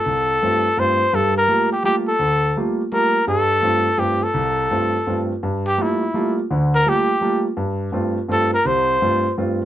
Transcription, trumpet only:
X:1
M:3/4
L:1/16
Q:"Swing" 1/4=168
K:Gdor
V:1 name="Trumpet"
A8 c4 | A2 B4 G2 G2 A2- | A4- A z3 B4 | A8 G2 A2- |
A8- A2 z2 | z2 G2 E6 z2 | z2 B2 G6 z2 | z8 A2 B2 |
c8 z4 |]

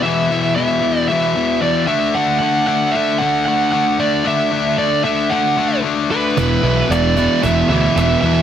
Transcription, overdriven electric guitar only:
X:1
M:4/4
L:1/8
Q:1/4=114
K:Dmix
V:1 name="Overdriven electric guitar" clef=bass
[E,,B,,E,] [E,,B,,E,] [E,,B,,E,] [E,,B,,E,] [E,,B,,E,] [E,,B,,E,] [E,,B,,E,] [D,A,D] | [D,A,D] [D,A,D] [D,A,D] [D,A,D] [D,A,D] [D,A,D] [D,A,D] [D,A,D] | [D,A,D] [D,A,D] [D,A,D] [D,A,D] [D,A,D] [D,A,D] [D,A,D] [D,A,D] | [E,,B,,E,] [E,,B,,E,] [E,,B,,E,] [E,,B,,E,] [E,,B,,E,] [E,,B,,E,] [E,,B,,E,] [E,,B,,E,] |]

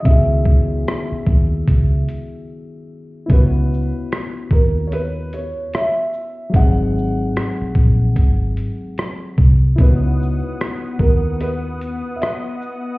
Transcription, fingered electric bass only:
X:1
M:4/4
L:1/16
Q:"Swing 16ths" 1/4=74
K:C#m
V:1 name="Fingered electric bass" clef=bass
C,,4 z2 D,,2 C,,2 z6 | C,,3 z3 D,,4- D,, z4 z | G,,,4 z2 ^A,,,2 G,,,2 z4 ^B,,,2 | C,,3 z3 D,,4- D,, z4 z |]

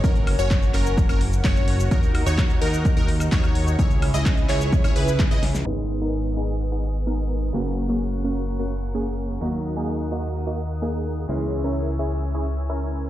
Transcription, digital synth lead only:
X:1
M:4/4
L:1/16
Q:1/4=128
K:G#m
V:1 name="Digital synth lead"
A3 c3 A3 A z2 c4 | A3 c3 A3 A z2 c4 | c3 d3 c3 c B3 d z2 | z16 |
z16 | z16 | z16 |]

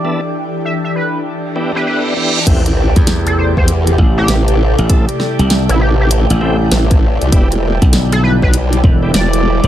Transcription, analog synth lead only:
X:1
M:4/4
L:1/16
Q:"Swing 16ths" 1/4=99
K:Am
V:1 name="Analog synth lead"
d2 z2 e e B z4 B B z3 | z4 z A c c z3 G z4 | z4 z E G G z8 | z4 z A B B z4 d4 |]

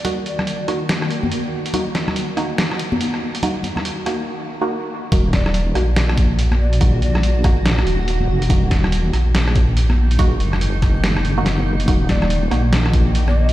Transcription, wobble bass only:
X:1
M:4/4
L:1/8
Q:"Swing 16ths" 1/4=142
K:Ebm
V:1 name="Wobble bass" clef=bass
z8 | z8 | z8 | E,,,3 B,,,4- B,,,- |
B,,, B,,,4 E,,,2 F,,, | E,,,3 B,,,4- B,,,- | B,,, G,,,4 G,,,3 | E,,,3 B,,,4- B,,, |]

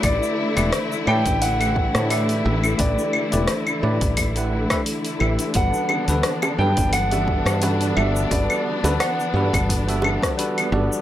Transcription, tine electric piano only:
X:1
M:4/4
L:1/16
Q:"Swing 16ths" 1/4=87
K:Amix
V:1 name="Tine electric piano"
[A,EGBd]3 [A,EGBd] z2 [A,EGBd]3 [A,EGBf]3 [A,EGBd]2 [A,EGBe]2 | [A,EGBd]3 [A,EGBd] z2 [A,EGBd]3 [A,EGBf]2 [A,EGBe] z2 [A,EGBe]2 | [G,DFAB]3 [G,DFAB] z2 [F,G,DAB]3 [G,DFAe]3 [G,DFAB]2 [G,DFAd]2 | [G,DFAB]3 [G,DFAB] z2 [G,DFAB]3 [G,DFAe]3 [G,DFAB]2 [G,DFAd]2 |]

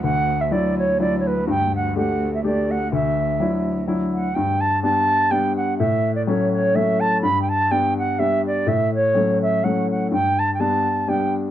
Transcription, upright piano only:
X:1
M:3/4
L:1/8
Q:"Swing" 1/4=125
K:Glyd
V:1 name="Upright piano"
D,,2 [F,DE]2 [F,DE]2 | G,,2 [A,DG]2 [A,DG]2 | D,,2 [F,DE]2 [F,DE]2 | G,,2 [G,B,D]2 [G,B,D]2 |
A,,2 [F,A,C]2 [F,A,C]2 | G,,2 [G,B,D]2 [G,B,D]2 | A,,2 [F,A,C]2 [F,A,C]2 | G,,2 [G,B,D]2 [G,B,D]2 |]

